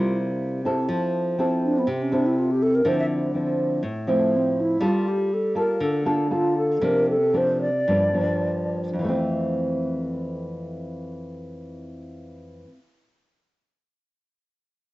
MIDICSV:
0, 0, Header, 1, 3, 480
1, 0, Start_track
1, 0, Key_signature, -1, "major"
1, 0, Tempo, 490196
1, 871, Time_signature, 4, 2, 24, 8
1, 5193, Tempo, 507614
1, 7113, Tempo, 551471
1, 8553, Tempo, 578592
1, 13490, End_track
2, 0, Start_track
2, 0, Title_t, "Alto flute"
2, 0, Program_c, 0, 73
2, 0, Note_on_c, 0, 65, 79
2, 163, Note_off_c, 0, 65, 0
2, 1614, Note_on_c, 0, 62, 73
2, 1747, Note_on_c, 0, 59, 65
2, 1762, Note_off_c, 0, 62, 0
2, 1865, Note_on_c, 0, 60, 66
2, 1880, Note_off_c, 0, 59, 0
2, 1976, Note_on_c, 0, 61, 64
2, 1991, Note_off_c, 0, 60, 0
2, 2085, Note_on_c, 0, 62, 77
2, 2100, Note_off_c, 0, 61, 0
2, 2213, Note_on_c, 0, 64, 71
2, 2228, Note_off_c, 0, 62, 0
2, 2336, Note_on_c, 0, 65, 68
2, 2351, Note_off_c, 0, 64, 0
2, 2460, Note_on_c, 0, 67, 72
2, 2475, Note_off_c, 0, 65, 0
2, 2569, Note_on_c, 0, 69, 83
2, 2584, Note_off_c, 0, 67, 0
2, 2693, Note_on_c, 0, 70, 73
2, 2708, Note_off_c, 0, 69, 0
2, 2822, Note_on_c, 0, 72, 82
2, 2837, Note_off_c, 0, 70, 0
2, 2923, Note_off_c, 0, 72, 0
2, 2928, Note_on_c, 0, 76, 84
2, 2995, Note_off_c, 0, 76, 0
2, 4013, Note_on_c, 0, 57, 72
2, 4269, Note_on_c, 0, 60, 72
2, 4283, Note_off_c, 0, 57, 0
2, 4502, Note_on_c, 0, 64, 74
2, 4517, Note_off_c, 0, 60, 0
2, 4754, Note_on_c, 0, 65, 72
2, 4769, Note_off_c, 0, 64, 0
2, 4975, Note_on_c, 0, 67, 82
2, 4989, Note_off_c, 0, 65, 0
2, 5225, Note_on_c, 0, 69, 78
2, 5239, Note_off_c, 0, 67, 0
2, 5442, Note_off_c, 0, 69, 0
2, 5451, Note_on_c, 0, 70, 93
2, 5694, Note_on_c, 0, 69, 77
2, 5708, Note_off_c, 0, 70, 0
2, 5914, Note_off_c, 0, 69, 0
2, 5925, Note_on_c, 0, 62, 46
2, 6174, Note_on_c, 0, 65, 75
2, 6188, Note_off_c, 0, 62, 0
2, 6391, Note_off_c, 0, 65, 0
2, 6396, Note_on_c, 0, 69, 79
2, 6654, Note_on_c, 0, 70, 90
2, 6668, Note_off_c, 0, 69, 0
2, 6882, Note_off_c, 0, 70, 0
2, 6892, Note_on_c, 0, 69, 79
2, 7145, Note_on_c, 0, 72, 74
2, 7158, Note_off_c, 0, 69, 0
2, 7352, Note_off_c, 0, 72, 0
2, 7357, Note_on_c, 0, 74, 83
2, 8399, Note_off_c, 0, 74, 0
2, 13490, End_track
3, 0, Start_track
3, 0, Title_t, "Nylon-string guitar"
3, 0, Program_c, 1, 24
3, 0, Note_on_c, 1, 48, 66
3, 0, Note_on_c, 1, 55, 46
3, 0, Note_on_c, 1, 58, 56
3, 0, Note_on_c, 1, 64, 55
3, 592, Note_off_c, 1, 55, 0
3, 595, Note_off_c, 1, 58, 0
3, 597, Note_off_c, 1, 64, 0
3, 635, Note_on_c, 1, 60, 56
3, 639, Note_on_c, 1, 64, 51
3, 645, Note_on_c, 1, 69, 63
3, 847, Note_off_c, 1, 48, 0
3, 866, Note_on_c, 1, 53, 69
3, 1334, Note_off_c, 1, 60, 0
3, 1335, Note_off_c, 1, 64, 0
3, 1339, Note_off_c, 1, 69, 0
3, 1357, Note_on_c, 1, 60, 53
3, 1363, Note_on_c, 1, 64, 54
3, 1369, Note_on_c, 1, 69, 54
3, 1804, Note_off_c, 1, 53, 0
3, 1831, Note_off_c, 1, 60, 0
3, 1832, Note_on_c, 1, 48, 68
3, 1835, Note_off_c, 1, 64, 0
3, 1835, Note_off_c, 1, 69, 0
3, 2075, Note_on_c, 1, 60, 51
3, 2082, Note_on_c, 1, 64, 54
3, 2082, Note_on_c, 1, 69, 61
3, 2755, Note_off_c, 1, 60, 0
3, 2756, Note_off_c, 1, 64, 0
3, 2757, Note_off_c, 1, 69, 0
3, 2767, Note_off_c, 1, 48, 0
3, 2788, Note_on_c, 1, 53, 50
3, 2790, Note_on_c, 1, 50, 71
3, 2794, Note_on_c, 1, 60, 51
3, 2799, Note_on_c, 1, 64, 65
3, 3230, Note_off_c, 1, 53, 0
3, 3234, Note_off_c, 1, 60, 0
3, 3236, Note_off_c, 1, 64, 0
3, 3269, Note_on_c, 1, 53, 53
3, 3275, Note_on_c, 1, 60, 50
3, 3281, Note_on_c, 1, 64, 59
3, 3726, Note_off_c, 1, 50, 0
3, 3746, Note_off_c, 1, 53, 0
3, 3748, Note_on_c, 1, 45, 66
3, 3750, Note_off_c, 1, 60, 0
3, 3751, Note_off_c, 1, 64, 0
3, 3987, Note_on_c, 1, 53, 54
3, 3993, Note_on_c, 1, 60, 59
3, 4001, Note_on_c, 1, 64, 59
3, 4670, Note_off_c, 1, 53, 0
3, 4673, Note_off_c, 1, 60, 0
3, 4677, Note_off_c, 1, 64, 0
3, 4685, Note_off_c, 1, 45, 0
3, 4705, Note_on_c, 1, 55, 69
3, 4709, Note_on_c, 1, 58, 56
3, 4713, Note_on_c, 1, 65, 57
3, 4715, Note_on_c, 1, 69, 58
3, 5188, Note_off_c, 1, 58, 0
3, 5188, Note_off_c, 1, 65, 0
3, 5191, Note_off_c, 1, 69, 0
3, 5427, Note_on_c, 1, 58, 57
3, 5434, Note_on_c, 1, 65, 53
3, 5439, Note_on_c, 1, 69, 67
3, 5635, Note_off_c, 1, 55, 0
3, 5667, Note_on_c, 1, 50, 64
3, 5860, Note_off_c, 1, 58, 0
3, 5864, Note_off_c, 1, 65, 0
3, 5865, Note_off_c, 1, 69, 0
3, 5901, Note_on_c, 1, 58, 60
3, 5907, Note_on_c, 1, 65, 52
3, 5911, Note_on_c, 1, 69, 62
3, 6099, Note_off_c, 1, 58, 0
3, 6102, Note_off_c, 1, 65, 0
3, 6104, Note_off_c, 1, 69, 0
3, 6140, Note_on_c, 1, 58, 50
3, 6145, Note_on_c, 1, 65, 51
3, 6150, Note_on_c, 1, 69, 52
3, 6598, Note_off_c, 1, 50, 0
3, 6602, Note_off_c, 1, 58, 0
3, 6604, Note_off_c, 1, 65, 0
3, 6607, Note_off_c, 1, 69, 0
3, 6622, Note_on_c, 1, 48, 67
3, 6625, Note_on_c, 1, 53, 50
3, 6628, Note_on_c, 1, 58, 58
3, 6633, Note_on_c, 1, 62, 56
3, 6938, Note_off_c, 1, 53, 0
3, 6940, Note_off_c, 1, 58, 0
3, 6943, Note_off_c, 1, 62, 0
3, 7113, Note_on_c, 1, 53, 49
3, 7119, Note_on_c, 1, 58, 53
3, 7123, Note_on_c, 1, 62, 55
3, 7411, Note_off_c, 1, 53, 0
3, 7414, Note_off_c, 1, 62, 0
3, 7415, Note_off_c, 1, 58, 0
3, 7557, Note_off_c, 1, 48, 0
3, 7585, Note_on_c, 1, 43, 63
3, 7589, Note_on_c, 1, 53, 56
3, 7595, Note_on_c, 1, 62, 58
3, 7596, Note_on_c, 1, 58, 57
3, 7783, Note_off_c, 1, 53, 0
3, 7784, Note_off_c, 1, 58, 0
3, 7786, Note_off_c, 1, 62, 0
3, 7815, Note_on_c, 1, 53, 59
3, 7821, Note_on_c, 1, 58, 53
3, 7823, Note_on_c, 1, 62, 61
3, 8503, Note_off_c, 1, 43, 0
3, 8506, Note_on_c, 1, 41, 57
3, 8512, Note_off_c, 1, 53, 0
3, 8513, Note_off_c, 1, 58, 0
3, 8515, Note_off_c, 1, 62, 0
3, 8556, Note_on_c, 1, 52, 60
3, 8598, Note_on_c, 1, 57, 63
3, 8633, Note_on_c, 1, 60, 70
3, 11578, Note_off_c, 1, 41, 0
3, 11625, Note_off_c, 1, 52, 0
3, 11667, Note_off_c, 1, 57, 0
3, 11703, Note_off_c, 1, 60, 0
3, 13490, End_track
0, 0, End_of_file